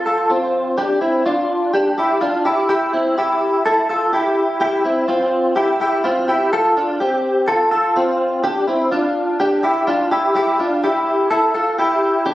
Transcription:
clean electric guitar
0.06 F4 A4
0.30 C4 F4
0.78 D4 G4
1.01 C4 E4
1.26 D4 F4
1.74 D4 G4
1.98 E4 G4
2.21 D4 F4
2.45 E4 G4
2.69 E4 G4
2.93 C4 E4
3.18 E4 G4
3.66 E4 A4
3.89 F4 A4
4.13 E4 G4
4.61 E4 G4
4.84 C4 E4
5.08 C4 F4
5.56 E4 G4
5.81 E4 G4
6.04 C4 F4
6.28 E4 G4
6.53 F4 A4
6.77 D4 F4
7.00 C4 G4
7.48 F4 A4
7.71 F4 A4
7.96 C4 F4
8.44 D4 G4
8.67 C4 E4
8.91 D4 F4
9.40 D4 G4
9.63 E4 G4
9.87 D4 F4
10.11 E4 G4
10.35 E4 G4
10.59 D4 F4
10.84 E4 G4
11.31 E4 A4
11.54 F4 A4
11.78 E4 G4
12.26 D4 G4

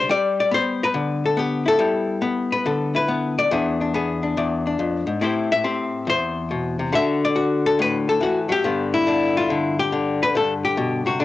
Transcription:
hollow-body jazz guitar
Already playing: G4
0.09 G3 D5
0.40 D5
0.51 B3 C5
0.83 A#4 B4
0.94 D3
1.26 A4
1.37 B3 G4
1.66 E4 A4
1.79 G3 E4
2.22 B3
2.52 B4
2.66 D3 A4
2.95 E4 B4
3.08 B3
3.39 D5
3.51 E2 B3 D4 G#4
3.81 D4
3.94 B3 G#4
4.23 D4
4.37 E2 D5
4.67 D4
4.79 F2
5.07 G#2
5.21 A2 C4 E4 G4 C5
5.52 E5
5.64 C4 G4
6.07 E2 C5
6.51 B2
6.79 C3
6.93 D3 F#4 A4 E5
7.25 D5
7.36 F#4
7.66 A4
7.79 A2 B4
8.09 A4
8.21 E3 F#4
8.49 F#3 G4
8.64 G2 D3 B3
8.94 E4
9.07 D3 D4
9.37 F4
9.50 D3
9.79 G4
9.92 D3
10.23 B4
10.35 G2 A4
10.65 G4
10.77 B2
11.06 C3 F#4
11.20 D3 D4

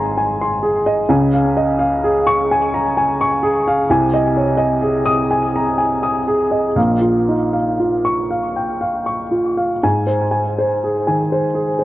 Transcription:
upright piano
Already playing: G#1 G#2 G#4 C#5 D#5 G#5 A#5 C6
0.18 G#5
0.41 C6
0.63 G#4
0.86 D#5
1.09 C#2 C#3 G#5
1.34 F5
1.57 D#5
1.79 F5
2.04 G#4
2.27 C#6
2.51 G#5
2.74 A#5
2.97 G#5
3.21 C#6
3.43 G#4
3.68 F5
3.90 C2 C3 G#5
4.14 D#5
4.37 C#5
4.57 D#5
4.82 G#4
5.06 D#6
5.31 G#5
5.56 A#5
5.78 G#5
6.03 D#6
6.28 G#4
6.51 D#5
6.76 A#1 A#2 F5
7.01 F4
7.29 D#4
7.53 F5
7.80 F4
8.05 C#6
8.31 F5
8.56 G5
8.81 F5
9.06 C#6
9.31 F4
9.57 F5
9.83 G#2 G#5
10.07 C5
10.31 G#5
10.58 C5
10.84 G#4
11.07 D#3 G#5
11.32 C5
11.55 G#4
11.79 C5

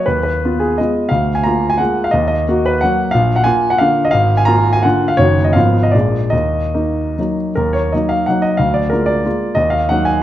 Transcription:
grand piano
0.06 D#2 B4
0.23 B4
0.45 B3 F4
0.60 G#4
0.78 G#3 B3 F4 D#5
1.09 D2 F5
1.35 G#5
1.44 A#3 F4 A#5
1.70 G#5
1.78 G#3 A#3 F4 F#5
2.04 F5
2.11 D#2 D#5
2.28 D#5
2.48 A#3 F#4
2.66 B4
2.81 F#3 A#3 F#4 F#5
3.11 A#1 F5
3.36 F#5
3.44 A#3 F4 G#5
3.70 F#5
3.78 D3 A#3 F4 F5
4.05 D#5
4.11 G#1 F5
4.37 G#5
4.45 A#3 F4 A#5
4.73 G#5
4.83 D3 A#3 F4 F#5
5.08 F5
5.17 F#1 D#3 A#3 F#4 C#5
5.44 D#5
5.53 G#1 F3 B3 F4 F5
5.83 D#5
5.92 A#1 G#3 A#3 F4 D5
6.30 D#2 D#5
6.74 A#3 D#4
7.19 F#3 A#3 D#4
7.55 D#2 A#4
7.73 C#5
7.92 F#3 A#3 D#4 D#5
8.09 F5
8.26 F#3 A#3 D#4 F#5
8.42 D#5
8.57 D2 F5
8.74 D5
8.90 G#3 A#3 F4 A#4
9.06 D5
9.25 G#3 A#3 F4
9.55 D#2 D#5
9.70 F5
9.89 F#3 A#3 D#4 F#5
10.05 G#5

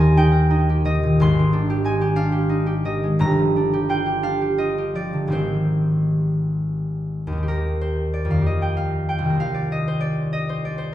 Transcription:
harp
Already playing: D#1 D#2 D#3 A#3 C4 D#4 G4 C5 G#5 C6
0.00 A#4
0.17 D#4 G5
0.32 A#4
0.51 D#4
0.69 G4
0.85 D#3 D#5
1.03 A#2
1.20 G#1 G#2 C6
1.39 D#3
1.53 D4
1.70 G4
1.84 D#4 G#5
2.01 G4
2.16 D4 F5
2.32 G4
2.49 D#4
2.66 G4
2.85 D#3 D#5
3.04 G#3
3.19 G1 G2 A#5
3.39 F3
3.56 D4
3.73 G4
3.89 F4 G5
4.06 G4
4.23 D4 F5
4.41 G4
4.58 F4 D#5
4.78 G4
4.95 F3 D5
5.13 D3
5.27 G#2 D#3 C4 G4
5.32 G#1 C5
7.27 D#2
7.32 D#3
7.38 C4
7.43 G4
7.48 A#4
7.81 C5
8.14 D5
8.25 F2
8.30 D#3 F5
8.35 A#3
8.41 G4
8.46 D#5
8.62 G5
8.77 F5
9.09 G5
9.19 C2
9.25 D#3
9.30 A#3
9.35 F4
9.40 F5
9.54 D5
9.72 D#5
9.88 C5
10.01 D5
10.33 D#5
10.49 C5
10.65 D5
10.78 C5

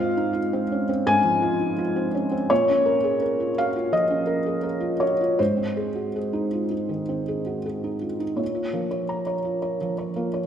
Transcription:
felt piano
Already playing: G#2 C4 F5
0.00 F4
0.17 D#4
0.33 F4
0.53 C4
0.72 C#4
0.89 C4
1.07 G#2 G#5
1.24 F3
1.42 F4
1.61 D#4
1.78 F4
1.96 C4
2.15 C#4
2.32 C4
2.50 A#2 C#5
2.69 C#4
2.86 A#4
3.04 G#4
3.22 A#4
3.40 F4
3.58 F#4 F5
3.76 F4
3.92 F3 D#5
4.10 C#4
4.27 A#4
4.46 G#4
4.63 A#4
4.80 F4
5.00 F#4 C#5
5.21 F4
5.39 G#2 C5
5.57 C4
5.77 G#4
5.95 F#4
6.16 G#4
6.33 D#4
6.53 F4
6.71 D#4
6.89 D#3
7.09 C4
7.28 G#4
7.46 F#4
7.66 G#4
7.84 D#4
8.01 F4
8.20 D#4
8.36 A#2 C#5
8.54 F4
8.73 F3 A#3
8.91 C#5
9.09 A#5
9.27 C#5
9.44 F4
9.62 C#5
9.81 F3 F4
9.98 C#5
10.16 A#3 F4
10.34 C#5

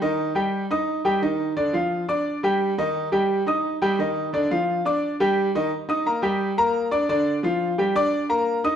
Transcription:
grand piano
0.02 D#3 D#4 D#5
0.35 G3 G4 G5
0.71 D#4 D#5 D#6
1.05 G3 G4 G5
1.22 D#3 D#4 D#5
1.56 D3 D4 D5
1.73 F3 F4 F5
2.09 D4 D5 D6
2.43 G3 G4 G5
2.78 D#3 D#4 D#5
3.12 G3 G4 G5
3.47 D#4 D#5 D#6
3.82 G3 G4 G5
3.99 D#3 D#4 D#5
4.33 D3 D4 D5
4.51 F3 F4 F5
4.85 D4 D5 D6
5.20 G3 G4 G5
5.55 D#3 D#4 D#5
5.89 D#4 D#5 D#6
6.06 A#3 A#4 A#5
6.22 G3 G4 G5
6.58 A#3 A#4 A#5
6.91 D4 D5 D6
7.09 D3 D4 D5
7.43 F3 F4 F5
7.78 G3 G4 G5
7.96 D4 D5 D6
8.29 A#3 A#4 A#5
8.64 D#4 D#5 D#6

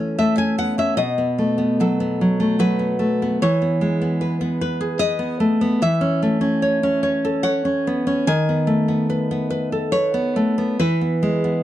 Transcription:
nylon-string guitar
Already playing: E3 A3
0.00 C#4
0.19 A3 E5
0.37 C#4 G#5
0.58 B3 F#5
0.78 C#4 E5
0.97 B2 D#5
1.18 B3
1.38 A3
1.58 B3
1.80 F#3 A4
2.00 B3
2.21 F#3
2.40 A3
2.59 F#3 B4
2.79 B3
2.99 A3
3.22 B3
3.42 E3 C#5
3.62 B3
3.81 G#3
4.02 B3
4.21 B4
4.41 B3
4.61 B4
4.81 G#4
4.99 B4 D#5
5.19 B3
5.40 A3
5.61 B3
5.82 E3 E5
6.01 C#4
6.22 A3
6.41 C#4
6.62 C#5
6.83 C#4
7.03 C#5
7.25 A4
7.43 C#5 F#5
7.65 C#4
7.87 B3
8.07 C#4
8.27 D#3 G#5
8.49 B3
8.67 A3
8.88 B3
9.10 B4
9.31 B3
9.50 B4
9.72 A4
9.92 B4 C#5
10.14 B3
10.36 A3
10.58 B3
10.80 E3 B4
11.01 B3
11.23 G#3
11.44 B3

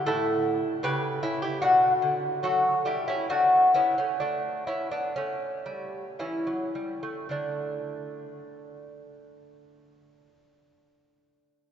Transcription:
lute
0.06 A2 E4 A4
0.83 C#3 G4 B4
1.23 C#4 E4
1.42 E4 G4
1.62 B2 D4 F#4
2.02 D3
2.43 F#3 F#4 A4
2.85 G3 E4 G4
3.08 C#4 E4
3.29 A3 D4 F#4
3.74 B3 C#4 E4
3.98 A3 C#4
4.20 A3 D4
4.67 C#4 E4
4.91 B3 D4
5.16 A3 C#4
5.66 G3
6.19 E3 C#4 E4
6.47 F#3
6.75 G3
7.03 A3
7.29 D3 A3 D4

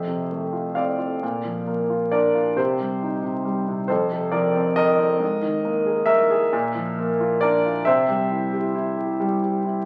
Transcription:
grand piano
Already playing: F2 C5 E5
0.07 C3
0.32 A3
0.53 F4
0.75 C4 D5 F5
0.99 F4
1.23 A#2
1.45 F3
1.67 A#3
1.90 F4
2.12 D4 A#4 D5
2.35 F4
2.56 C3 G4 C5
2.80 G3
3.03 D#4
3.23 C3
3.45 G3
3.68 C3
3.88 F2 A4 C5
4.11 C3
4.32 F3 A#4 D5
4.55 C4
4.76 A#4 D#5
4.98 C4
5.20 G#2
5.42 D#3
5.65 A#3
5.86 G#4
6.06 A#4 E5
6.30 G#4
6.53 A#2
6.75 F3
6.98 A#3
7.20 F4
7.41 D4 A#4 D5
7.65 F4
7.85 C3 C5 E5
8.08 G3
8.31 E4
8.53 G4
8.75 E4
8.97 G4
9.20 G3
9.42 G4
9.64 E4

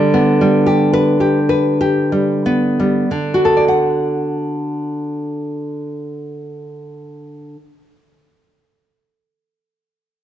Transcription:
nylon-string guitar
Already playing: D3 G3
0.14 B3
0.41 G3
0.66 G4
0.93 B4
1.20 G4
1.49 B4
1.81 G4
2.12 G3
2.46 B3
2.80 G3
3.11 D3
3.34 F#4
3.45 A4
3.57 D5
3.68 F#5

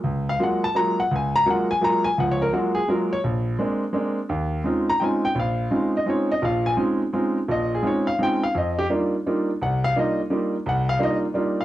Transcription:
grand piano
0.04 C#2
0.29 F5
0.39 F#3 G#3 A#3 F4
0.43 F#5
0.64 A5
0.75 F#3 G#3 A#3 F4 A#5
1.00 F#5
1.11 C#2
1.16 G#5
1.36 A#5
1.46 F#3 G#3 A#3 F4
1.50 F#5
1.71 G#5
1.81 F#3 G#3 A#3 F4 A#5
2.05 G#5
2.18 C#2 F3 F#5
2.32 C#5
2.42 A#4
2.53 F#3 G#3 A#3 F4 F#4
2.75 G#4
2.88 F#3 G#3 A#3 F4 A#4
3.13 C#5
3.24 A#1
3.59 G#3 A#3 C4 D4
3.93 G#3 A#3 C4 D4
4.29 D#2
4.64 G#3 C4 C#4 D#4 F4
4.90 A#5
5.00 G#3 C4 C#4 D#4 F4 G5
5.04 G#5
5.25 G5
5.35 A#1
5.39 F5
5.71 G#3 C4 C#4 D#4 F4
5.97 D#5
6.06 G#3 C4 C#4 D#4 F4 C#5
6.32 D#5
6.42 A#1 A#2 F5
6.66 G#5
6.77 G#3 C4 C#4 D#4 F4
7.13 G#3 C4 C#4 D#4 F4
7.48 A#1 A#2 D#5
7.75 G#4
7.82 G#3 C4 C#4 D#4 F4
7.87 C#5
8.07 F5
8.19 G#3 C4 C#4 D#4 F4
8.23 G5
8.43 F5
8.55 F2 D#5
8.79 G4
8.90 G3 A#3 D4 D#4 F4
9.27 G3 A#3 D4 D#4 F4
9.61 C2 F#5
9.84 F5
9.96 G3 A#3 D4 D#4 F4 D#5
10.30 G3 A#3 D4 D#4 F4
10.66 C2 F#5
10.89 F5
10.99 G3 A#3 D4 D#4 F4
11.03 D#5
11.34 G3 A#3 D4 D#4 F4
11.61 F5

